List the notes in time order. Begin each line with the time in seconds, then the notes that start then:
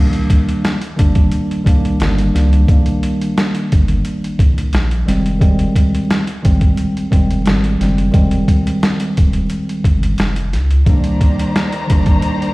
Already playing: C2 D#3 G3 A#3
0.00 D4
0.13 closed hi-hat
0.30 kick, closed hi-hat
0.49 closed hi-hat
0.65 snare, closed hi-hat
0.82 closed hi-hat
0.96 G1 D#3 G3 A#3 D4, kick, closed hi-hat
1.15 kick, closed hi-hat
1.32 closed hi-hat
1.51 closed hi-hat
1.64 C2 D#3 G3 A#3 D4, kick, closed hi-hat
1.85 closed hi-hat
2.00 G1 D#3 G3 A#3 D4, snare, closed hi-hat
2.18 closed hi-hat
2.33 C#2 D#3 G3 A#3 D4, snare, closed hi-hat
2.53 closed hi-hat
2.68 C2 D#3 G3 A#3 D4, kick, closed hi-hat
2.86 closed hi-hat
3.03 closed hi-hat
3.22 closed hi-hat
3.38 snare, closed hi-hat
3.55 closed hi-hat
3.72 G1, kick, closed hi-hat
3.88 closed hi-hat
4.05 closed hi-hat
4.24 closed hi-hat
4.39 C2, kick, closed hi-hat
4.58 closed hi-hat
4.73 A#1, snare, closed hi-hat
4.91 closed hi-hat
5.05 F1 D#3 G3 G#3 C4, snare, closed hi-hat
5.26 closed hi-hat
5.39 D#3 G3 G#3 C4, kick, closed hi-hat
5.59 closed hi-hat
5.76 kick, closed hi-hat
5.95 closed hi-hat
6.10 snare, closed hi-hat
6.27 closed hi-hat
6.42 G#1 D#3 G3 G#3 C4, kick, closed hi-hat
6.61 kick, closed hi-hat
6.77 closed hi-hat
6.97 closed hi-hat
7.10 F1 D#3 G3 G#3 C4, kick, closed hi-hat
7.31 closed hi-hat
7.45 G#1 D#3 G3 G#3 C4, snare, closed hi-hat
7.64 closed hi-hat
7.79 F#1 D#3 G3 G#3 C4, snare, closed hi-hat
7.98 closed hi-hat
8.12 F1 D#3 G3 G#3 C4, kick, closed hi-hat
8.31 closed hi-hat
8.48 kick, closed hi-hat
8.67 closed hi-hat
8.83 snare, closed hi-hat
9.00 closed hi-hat
9.17 D#1, kick, closed hi-hat
9.33 closed hi-hat
9.50 closed hi-hat
9.69 closed hi-hat
9.84 G1, kick, closed hi-hat
10.03 closed hi-hat
10.18 F1, snare, closed hi-hat
10.36 closed hi-hat
10.53 C#2, snare, closed hi-hat
10.71 closed hi-hat
10.86 C2 D#3 G3 A#3 D4 C5 D5 A#5, kick, closed hi-hat
11.04 closed hi-hat
11.21 kick, closed hi-hat
11.39 closed hi-hat
11.56 snare, closed hi-hat
11.73 closed hi-hat
11.87 G1 D#3 G3 A#3 D4, kick, closed hi-hat
12.06 kick, closed hi-hat
12.22 closed hi-hat
12.42 closed hi-hat